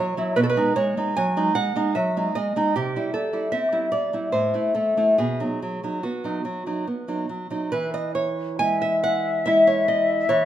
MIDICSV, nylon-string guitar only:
0, 0, Header, 1, 2, 480
1, 0, Start_track
1, 0, Key_signature, 4, "major"
1, 0, Tempo, 791557
1, 228, Time_signature, 3, 2, 24, 8
1, 2633, Tempo, 843882
1, 4553, Tempo, 874636
1, 5513, Tempo, 836820
1, 6077, End_track
2, 0, Start_track
2, 0, Title_t, "Nylon-string guitar"
2, 0, Program_c, 0, 24
2, 0, Note_on_c, 0, 54, 39
2, 0, Note_on_c, 0, 73, 62
2, 99, Note_off_c, 0, 54, 0
2, 105, Note_on_c, 0, 54, 40
2, 109, Note_on_c, 0, 64, 48
2, 214, Note_off_c, 0, 54, 0
2, 214, Note_off_c, 0, 73, 0
2, 215, Note_off_c, 0, 64, 0
2, 219, Note_on_c, 0, 71, 68
2, 222, Note_on_c, 0, 47, 56
2, 261, Note_off_c, 0, 71, 0
2, 263, Note_on_c, 0, 69, 60
2, 298, Note_off_c, 0, 69, 0
2, 300, Note_on_c, 0, 71, 69
2, 339, Note_off_c, 0, 47, 0
2, 345, Note_on_c, 0, 56, 40
2, 348, Note_on_c, 0, 63, 41
2, 452, Note_off_c, 0, 56, 0
2, 453, Note_off_c, 0, 63, 0
2, 455, Note_off_c, 0, 71, 0
2, 460, Note_on_c, 0, 73, 69
2, 465, Note_on_c, 0, 56, 42
2, 583, Note_off_c, 0, 56, 0
2, 589, Note_on_c, 0, 56, 33
2, 593, Note_on_c, 0, 63, 33
2, 691, Note_off_c, 0, 73, 0
2, 695, Note_off_c, 0, 56, 0
2, 695, Note_off_c, 0, 63, 0
2, 706, Note_on_c, 0, 80, 73
2, 713, Note_on_c, 0, 54, 41
2, 829, Note_on_c, 0, 56, 37
2, 831, Note_on_c, 0, 63, 42
2, 900, Note_off_c, 0, 54, 0
2, 935, Note_off_c, 0, 56, 0
2, 936, Note_off_c, 0, 63, 0
2, 936, Note_off_c, 0, 80, 0
2, 940, Note_on_c, 0, 78, 77
2, 945, Note_on_c, 0, 56, 40
2, 1058, Note_off_c, 0, 56, 0
2, 1065, Note_on_c, 0, 56, 38
2, 1070, Note_on_c, 0, 63, 39
2, 1174, Note_off_c, 0, 56, 0
2, 1175, Note_off_c, 0, 78, 0
2, 1177, Note_off_c, 0, 63, 0
2, 1182, Note_on_c, 0, 76, 59
2, 1187, Note_on_c, 0, 54, 37
2, 1315, Note_on_c, 0, 56, 34
2, 1318, Note_on_c, 0, 63, 36
2, 1381, Note_off_c, 0, 54, 0
2, 1417, Note_off_c, 0, 76, 0
2, 1421, Note_off_c, 0, 56, 0
2, 1421, Note_off_c, 0, 63, 0
2, 1426, Note_on_c, 0, 75, 59
2, 1432, Note_on_c, 0, 56, 34
2, 1546, Note_off_c, 0, 56, 0
2, 1553, Note_on_c, 0, 56, 37
2, 1557, Note_on_c, 0, 63, 45
2, 1657, Note_off_c, 0, 75, 0
2, 1658, Note_off_c, 0, 56, 0
2, 1661, Note_off_c, 0, 63, 0
2, 1672, Note_on_c, 0, 67, 62
2, 1676, Note_on_c, 0, 48, 44
2, 1787, Note_off_c, 0, 48, 0
2, 1796, Note_on_c, 0, 55, 33
2, 1799, Note_on_c, 0, 64, 40
2, 1897, Note_off_c, 0, 67, 0
2, 1898, Note_off_c, 0, 55, 0
2, 1900, Note_off_c, 0, 64, 0
2, 1902, Note_on_c, 0, 69, 58
2, 1910, Note_on_c, 0, 55, 36
2, 2012, Note_off_c, 0, 55, 0
2, 2019, Note_on_c, 0, 55, 32
2, 2022, Note_on_c, 0, 64, 31
2, 2129, Note_off_c, 0, 55, 0
2, 2130, Note_off_c, 0, 64, 0
2, 2132, Note_off_c, 0, 69, 0
2, 2133, Note_on_c, 0, 76, 62
2, 2140, Note_on_c, 0, 60, 36
2, 2257, Note_on_c, 0, 55, 30
2, 2260, Note_on_c, 0, 64, 35
2, 2334, Note_off_c, 0, 60, 0
2, 2369, Note_off_c, 0, 55, 0
2, 2370, Note_off_c, 0, 64, 0
2, 2370, Note_off_c, 0, 76, 0
2, 2375, Note_on_c, 0, 74, 55
2, 2381, Note_on_c, 0, 55, 34
2, 2500, Note_off_c, 0, 55, 0
2, 2506, Note_on_c, 0, 55, 32
2, 2511, Note_on_c, 0, 64, 32
2, 2616, Note_off_c, 0, 74, 0
2, 2619, Note_off_c, 0, 55, 0
2, 2619, Note_off_c, 0, 64, 0
2, 2622, Note_on_c, 0, 72, 52
2, 2626, Note_on_c, 0, 45, 36
2, 2743, Note_off_c, 0, 45, 0
2, 2745, Note_on_c, 0, 57, 30
2, 2750, Note_on_c, 0, 64, 32
2, 2855, Note_off_c, 0, 57, 0
2, 2855, Note_off_c, 0, 72, 0
2, 2857, Note_off_c, 0, 64, 0
2, 2862, Note_on_c, 0, 69, 45
2, 2867, Note_on_c, 0, 57, 27
2, 2986, Note_off_c, 0, 57, 0
2, 2992, Note_on_c, 0, 57, 31
2, 2995, Note_on_c, 0, 64, 38
2, 3099, Note_off_c, 0, 69, 0
2, 3101, Note_off_c, 0, 57, 0
2, 3102, Note_off_c, 0, 64, 0
2, 3111, Note_on_c, 0, 68, 55
2, 3116, Note_on_c, 0, 47, 40
2, 3232, Note_off_c, 0, 47, 0
2, 3235, Note_on_c, 0, 54, 31
2, 3238, Note_on_c, 0, 63, 32
2, 3343, Note_off_c, 0, 54, 0
2, 3344, Note_off_c, 0, 63, 0
2, 3362, Note_on_c, 0, 54, 29
2, 3476, Note_off_c, 0, 54, 0
2, 3483, Note_on_c, 0, 54, 28
2, 3486, Note_on_c, 0, 63, 30
2, 3573, Note_off_c, 0, 68, 0
2, 3586, Note_off_c, 0, 54, 0
2, 3588, Note_off_c, 0, 63, 0
2, 3594, Note_on_c, 0, 66, 36
2, 3598, Note_on_c, 0, 59, 33
2, 3714, Note_on_c, 0, 54, 29
2, 3719, Note_on_c, 0, 63, 33
2, 3786, Note_off_c, 0, 59, 0
2, 3820, Note_off_c, 0, 54, 0
2, 3823, Note_off_c, 0, 63, 0
2, 3831, Note_on_c, 0, 54, 33
2, 3948, Note_off_c, 0, 54, 0
2, 3955, Note_on_c, 0, 54, 28
2, 3957, Note_on_c, 0, 63, 30
2, 4049, Note_off_c, 0, 66, 0
2, 4058, Note_off_c, 0, 54, 0
2, 4060, Note_off_c, 0, 63, 0
2, 4073, Note_on_c, 0, 59, 29
2, 4192, Note_on_c, 0, 54, 29
2, 4194, Note_on_c, 0, 63, 29
2, 4261, Note_off_c, 0, 59, 0
2, 4297, Note_off_c, 0, 54, 0
2, 4298, Note_off_c, 0, 63, 0
2, 4312, Note_on_c, 0, 54, 29
2, 4426, Note_off_c, 0, 54, 0
2, 4432, Note_on_c, 0, 54, 29
2, 4436, Note_on_c, 0, 63, 31
2, 4541, Note_off_c, 0, 54, 0
2, 4543, Note_off_c, 0, 63, 0
2, 4553, Note_on_c, 0, 71, 64
2, 4557, Note_on_c, 0, 52, 45
2, 4672, Note_off_c, 0, 71, 0
2, 4674, Note_on_c, 0, 75, 58
2, 4787, Note_off_c, 0, 75, 0
2, 4790, Note_on_c, 0, 73, 62
2, 5024, Note_off_c, 0, 73, 0
2, 5033, Note_on_c, 0, 80, 78
2, 5036, Note_on_c, 0, 56, 37
2, 5154, Note_off_c, 0, 80, 0
2, 5156, Note_on_c, 0, 76, 57
2, 5274, Note_off_c, 0, 76, 0
2, 5276, Note_on_c, 0, 78, 70
2, 5502, Note_off_c, 0, 78, 0
2, 5507, Note_off_c, 0, 56, 0
2, 5507, Note_on_c, 0, 76, 73
2, 5513, Note_on_c, 0, 56, 34
2, 5515, Note_on_c, 0, 64, 40
2, 5628, Note_off_c, 0, 76, 0
2, 5631, Note_on_c, 0, 73, 63
2, 5749, Note_off_c, 0, 73, 0
2, 5751, Note_on_c, 0, 75, 64
2, 5970, Note_off_c, 0, 56, 0
2, 5971, Note_off_c, 0, 64, 0
2, 5972, Note_off_c, 0, 52, 0
2, 5981, Note_off_c, 0, 75, 0
2, 5985, Note_on_c, 0, 73, 79
2, 5990, Note_on_c, 0, 52, 57
2, 6077, Note_off_c, 0, 52, 0
2, 6077, Note_off_c, 0, 73, 0
2, 6077, End_track
0, 0, End_of_file